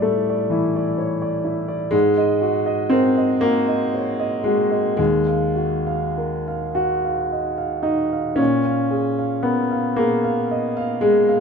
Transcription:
grand piano
Already playing: A2 G3 E4 D5
0.02 A3 A4
0.29 D5
0.50 E3 E4
0.76 D5
0.98 C#5
1.22 D5
1.44 E4
1.68 D5
1.91 G#2 G#3
2.18 D#5
2.41 F#4
2.66 D#5
2.90 C4 A#4
3.17 D#5
3.41 A#3 F#4
3.68 D#5
3.94 C#5
4.20 D#5
4.44 G#3 F#4
4.71 D#5
4.97 D#2 G#3
5.27 F5
5.55 F#4
5.87 F5
6.18 A#4
6.48 F5
6.75 F#4
7.05 F5
7.33 D#5
7.58 F5
7.83 D#4 F#4
8.13 F5
8.36 A#2 C#4
8.65 F5
8.91 G#4
9.19 F5
9.43 B3 A#4
9.72 F5
9.96 A#3 G#4
10.24 F5
10.51 D#5
10.77 F5
11.01 G#3 G#4
11.29 F5

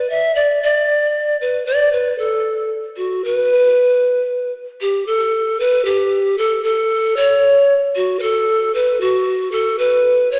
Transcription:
pan flute
0.10 E5
0.35 D5
0.63 D5
1.41 B4
1.66 D5
1.93 B4
2.18 A4
2.97 F#4
3.24 B4
4.81 G4
5.07 A4
5.60 B4
5.85 G4
6.38 A4
6.64 A4
7.16 C#5
7.96 F#4
8.19 A4 B4
8.75 B4
9.01 F#4
9.52 A4
9.79 B4
10.31 C#5

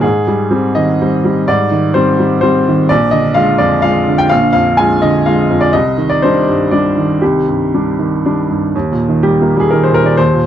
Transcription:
upright piano
0.01 G#2 G#4
0.27 G3
0.51 G3 C4
0.75 D#3 D#5
1.02 G3 C4
1.25 G3
1.48 G#2 D5
1.71 D#3
1.94 G3 C4 C5
2.19 G3
2.41 G3 C4 C5
2.69 D#3
2.89 A#1 D5
3.11 D3 D#5
3.34 G#3 F4 F5
3.58 F2 D5
3.82 G#3 F4 F5
4.08 D3
4.18 G5
4.29 A#1 F5
4.53 F2 F5
4.77 G#3 F4 G#5
5.02 D3 D#5
5.26 G#3 F4 F5
5.50 F2
5.61 D5
5.73 C2 D#5
5.98 D#3
6.09 D5
6.22 G3 D4 C5
6.48 G2
6.71 G3 D4 D5
6.97 D#3
7.21 C2 G4
7.48 G2
7.74 G3 D4
7.99 D#3
8.25 G3 D4
8.50 G2
8.75 D#2
8.92 A#2
9.09 D#3
9.23 G3 G4
9.42 A#3
9.56 G3 G#4
9.71 D#3 A#4
9.83 C5
9.89 A#2
9.94 A#4
10.04 D#3 D5
10.17 D#2 C5
10.33 A#2

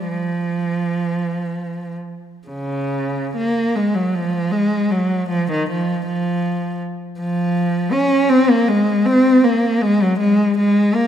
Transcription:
cello
0.08 F3
2.48 C#3
3.36 A#3
3.76 G#3
3.95 F#3
4.15 F3
4.51 G#3
4.91 F#3
5.29 F3
5.51 D#3
5.70 F3
6.06 F3
7.20 F3
7.92 C#4
8.30 C4
8.50 A#3
8.68 G#3
9.06 C4
9.44 A#3
9.81 G#3
10.03 F#3
10.19 G#3
10.58 G#3
10.95 A#3

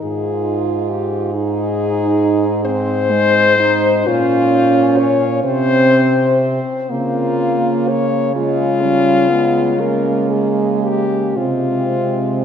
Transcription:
french horn
Already playing: D#4
0.02 G#2 F4 G#4
0.89 G4
1.33 D#4 G#4
2.65 C4 C5
3.10 G#3
3.59 D#4
4.06 A#2 C#4 F4
4.98 C#5
5.43 C3 C4 C5
6.91 C#3 A#3 F4
7.89 C#5
8.34 G#3 F4
8.82 G3 C#4
9.30 G#3 B3
9.79 A#3 A#4
10.30 G#4
10.83 G4
11.36 C3 G#3 C4 F4

